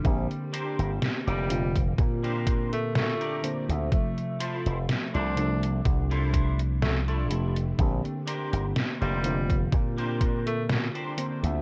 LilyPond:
<<
  \new Staff \with { instrumentName = "Clean electric guitar" } { \time 4/4 \key bes \lydian \tempo 4 = 62 r8 <d' g' bes' c''>8 r16 <d' g' bes' d''>16 r8. <d' g' bes' c''>8 r8 <d' g' bes' d''>8 r16 | r8 <e' f' a' c''>8 r16 <e' f' a' c''>16 r8. <e' f' a' c''>8 r8 <e' f' a' d''>8 r16 | r8 <d' g' bes' c''>8 r16 <d' g' bes' c''>16 r8. <d' g' bes' c''>8 r8 <d' g' bes' c''>8 r16 | }
  \new Staff \with { instrumentName = "FM electric piano" } { \time 4/4 \key bes \lydian <d bes c' g'>4. <bes, d c' f'>2 <d bes c' c''>8 | <c f a e''>4. <c f a d'>2 <c f a g'>8 | <d bes c' g'>4. <d bes c' f'>2 <d bes c' c''>8 | }
  \new Staff \with { instrumentName = "Tenor saxophone" } { \time 4/4 \key bes \lydian r4 r16 g8 r4 a16 a8 r8 | r4 r16 d'8 r4 r16 a16 a16 r8 | r4 r16 g8 r4 a16 r4 | }
  \new Staff \with { instrumentName = "Slap bass" } { \clef bass \time 4/4 \key bes \lydian bes,,16 r8 g,,16 r16 f,,8. bes,4~ bes,16 r8 d,16 | r8. f,,16 r16 c,8. c,4. f,,8 | bes,,16 r8 g,,16 r16 f,,8. bes,4~ bes,16 r8 d,16 | }
  \new DrumStaff \with { instrumentName = "Drums" } \drummode { \time 4/4 <hh bd>16 hh16 hh16 hh16 <hh sn>16 hh16 hh16 <hh bd>16 <hh bd>16 hh16 <hh bd>16 hh16 <hh sn>16 hh16 hh16 hh16 | <hh bd>16 hh16 hh16 hh16 <hh sn>16 hh16 hh16 hh16 <hh bd>16 hh16 <hh bd>16 hh16 <hh sn>16 hh16 hh16 hh16 | <hh bd>16 hh16 hh16 hh16 <hh sn>16 hh16 hh16 <hh bd>16 <hh bd>16 hh16 <hh bd>16 hh16 <hh sn>16 hh16 hh16 hh16 | }
>>